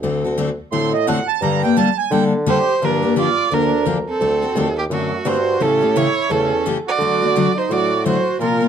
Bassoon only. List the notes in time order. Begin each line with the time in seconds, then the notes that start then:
0.02 D2
0.72 A2
1.41 G2
2.11 D3
2.81 G2
3.51 D2
4.20 D2
4.55 D#2
4.89 F#2
5.25 G2
5.60 A2
6.29 E2
6.99 D3
7.69 A2
8.39 A#2